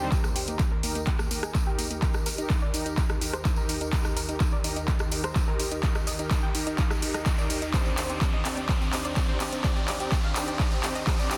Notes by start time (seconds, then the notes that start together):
Already playing: swell
0.00 D#2 G3 C4 D4 D#4 G4 C5
0.12 D#2 D#3 D#4 G4 A#4, kick, clap, closed hi-hat, tambourine, riser
0.24 A#3, cross-stick, tambourine
0.36 G4, open hi-hat, tambourine
0.47 A#3 D#4 G4 A#4, closed hi-hat, tambourine
0.59 kick, clap, closed hi-hat, tambourine
0.72 A#4
0.83 A#3 D#4 G4 A#4, open hi-hat, tambourine
0.95 A#3, closed hi-hat, tambourine
1.07 G4, kick, clap, closed hi-hat, tambourine
1.19 A#3, cross-stick, tambourine
1.31 A#3 D#4 G4 A#4, open hi-hat, tambourine
1.43 G#4, cross-stick, closed hi-hat, tambourine
1.55 A#3, kick, clap, closed hi-hat, tambourine
1.67 D#4 G4 A#4
1.79 A#3, open hi-hat, tambourine
1.90 A#3, closed hi-hat, tambourine
2.02 D#4 G4 A#4, kick, clap, closed hi-hat, tambourine
2.14 D#4, cross-stick, tambourine
2.26 A#4, open hi-hat, tambourine
2.38 D#4 G4 A#4, closed hi-hat, tambourine
2.50 kick, clap, closed hi-hat, tambourine
2.62 D5
2.74 D#4 G4 A#4, open hi-hat, tambourine
2.86 D#4, closed hi-hat, tambourine
2.98 A#4, kick, clap, closed hi-hat, tambourine
3.09 D#4, cross-stick, tambourine
3.21 D#4 G4 A#4, open hi-hat, tambourine
3.33 C5, cross-stick, closed hi-hat
3.45 D#4, kick, clap, closed hi-hat, tambourine
3.56 D#4 G4 A#4, tambourine
3.69 D#4, open hi-hat, tambourine
3.81 D#4, closed hi-hat, tambourine
3.93 G4 A#4, kick, clap, closed hi-hat, tambourine
4.05 D#4, cross-stick, tambourine
4.17 A#4, open hi-hat, tambourine
4.29 D#4 G4 A#4, closed hi-hat, tambourine
4.40 D#4, kick, clap, closed hi-hat, tambourine
4.53 D5
4.64 D#4 G4 A#4, open hi-hat, tambourine
4.76 D#4, closed hi-hat, tambourine
4.88 A#4, kick, clap, closed hi-hat, tambourine
4.99 D#4, cross-stick, tambourine
5.11 D#4 G4 A#4, open hi-hat, tambourine
5.24 C5, cross-stick, closed hi-hat, tambourine
5.36 D#4, kick, clap, closed hi-hat, tambourine
5.48 D#4 G4 A#4
5.59 D#4, open hi-hat, tambourine
5.71 D#4, closed hi-hat, tambourine
5.83 D#4 G4 A#4 D#5, kick, clap, closed hi-hat, tambourine
5.95 D#4, cross-stick, tambourine
6.07 D#5, open hi-hat, tambourine
6.19 D#4 G4 A#4, closed hi-hat, tambourine
6.31 D#4, kick, clap, closed hi-hat, tambourine
6.43 G5
6.55 D#4 G4 A#4, open hi-hat, tambourine
6.67 D#4, closed hi-hat, tambourine
6.78 F5, kick, clap, closed hi-hat, tambourine
6.91 D#4, cross-stick, tambourine
7.02 D#4 G4 A#4, open hi-hat, tambourine
7.14 D#5, cross-stick, closed hi-hat, tambourine
7.26 D#4, kick, clap, closed hi-hat, tambourine
7.38 D#4 G4 A#4 D5, tambourine
7.50 D#4, open hi-hat, tambourine
7.62 D#4, closed hi-hat, tambourine
7.74 C4 D4 D#4 G4 C5 D5, kick, clap, closed hi-hat, tambourine
7.86 C4, tambourine
7.98 C5, clap, open hi-hat, tambourine
8.10 C4 D4 D#4 G4 D5, closed hi-hat, tambourine
8.21 C4, kick, clap, closed hi-hat, tambourine
8.34 D#5
8.45 C4 D4 D#4 G4 D5, clap, open hi-hat, tambourine
8.57 C4, closed hi-hat, tambourine
8.69 C5, kick, clap, closed hi-hat, tambourine
8.81 C4, tambourine
8.93 C4 D4 D#4 G4 C5, clap, open hi-hat, tambourine
9.05 D5, closed hi-hat, tambourine
9.16 C4, kick, clap, closed hi-hat, tambourine
9.29 C4 D4 D#4 G4 C5 D5
9.40 C4, clap, open hi-hat, tambourine
9.52 C4, closed hi-hat, tambourine
9.64 C4 D4 D#4 G4 D5, kick, clap, closed hi-hat, tambourine
9.76 G4, tambourine
9.88 D5, clap, open hi-hat, tambourine
10.00 C4 D4 D#4 G4 D5, closed hi-hat, tambourine
10.12 G4, kick, clap, closed hi-hat, tambourine
10.24 F5
10.36 C4 D4 D#4 G4 D5, clap, open hi-hat, tambourine
10.48 G4, closed hi-hat, tambourine
10.60 D5, kick, clap, closed hi-hat, tambourine
10.72 G4, tambourine
10.83 C4 D4 D#4 G4 C5, clap, open hi-hat, tambourine
10.95 D#5, closed hi-hat, tambourine
11.07 G4, kick, clap, closed hi-hat, tambourine
11.19 C4 D4 D#4 G4 D5, tambourine
11.31 G4, clap, open hi-hat, tambourine